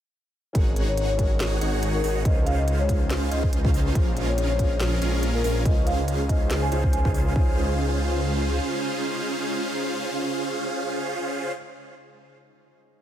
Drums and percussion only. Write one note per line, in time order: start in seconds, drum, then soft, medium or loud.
0.55 kick loud
0.55 closed hi-hat medium
0.76 closed hi-hat medium
0.97 closed hi-hat medium
1.19 kick medium
1.19 closed hi-hat medium
1.40 snare loud
1.40 closed hi-hat medium
1.61 closed hi-hat medium
1.83 closed hi-hat medium
2.04 open hi-hat loud
2.25 kick loud
2.25 closed hi-hat medium
2.47 closed hi-hat medium
2.68 closed hi-hat medium
2.89 kick medium
2.89 closed hi-hat medium
3.10 snare loud
3.10 closed hi-hat medium
3.32 closed hi-hat medium
3.43 kick medium
3.53 closed hi-hat medium
3.65 kick loud
3.74 open hi-hat loud
3.95 kick loud
3.95 closed hi-hat medium
4.17 closed hi-hat medium
4.38 closed hi-hat medium
4.59 kick medium
4.59 closed hi-hat medium
4.80 snare loud
4.80 closed hi-hat medium
5.02 closed hi-hat medium
5.23 closed hi-hat medium
5.44 open hi-hat medium
5.65 kick loud
5.65 closed hi-hat medium
5.87 closed hi-hat medium
6.08 closed hi-hat medium
6.29 kick medium
6.29 closed hi-hat medium
6.51 snare loud
6.51 closed hi-hat medium
6.72 closed hi-hat medium
6.84 kick medium
6.93 closed hi-hat medium
7.05 kick loud
7.14 open hi-hat loud
7.36 kick loud